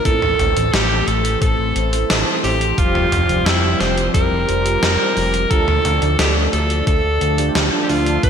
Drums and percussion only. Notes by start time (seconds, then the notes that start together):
0.05 kick, closed hi-hat
0.22 mid tom
0.39 closed hi-hat, mid tom
0.57 closed hi-hat
0.74 snare, closed hi-hat
1.08 closed hi-hat
1.25 closed hi-hat
1.42 kick, closed hi-hat
1.76 closed hi-hat
1.93 closed hi-hat
2.10 snare, closed hi-hat
2.44 open hi-hat
2.61 closed hi-hat
2.78 kick, closed hi-hat
2.95 mid tom
3.12 closed hi-hat, mid tom
3.29 closed hi-hat
3.46 snare, closed hi-hat
3.81 snare, closed hi-hat
3.98 closed hi-hat
4.14 kick, closed hi-hat
4.49 closed hi-hat
4.66 closed hi-hat
4.83 snare, closed hi-hat
5.17 open hi-hat
5.34 closed hi-hat
5.51 kick, closed hi-hat
5.68 mid tom
5.85 closed hi-hat, mid tom
6.02 closed hi-hat
6.19 snare, closed hi-hat
6.53 closed hi-hat
6.70 closed hi-hat
6.87 kick, closed hi-hat
7.21 closed hi-hat
7.38 closed hi-hat
7.55 snare, closed hi-hat
7.89 open hi-hat
8.06 closed hi-hat
8.23 kick, closed hi-hat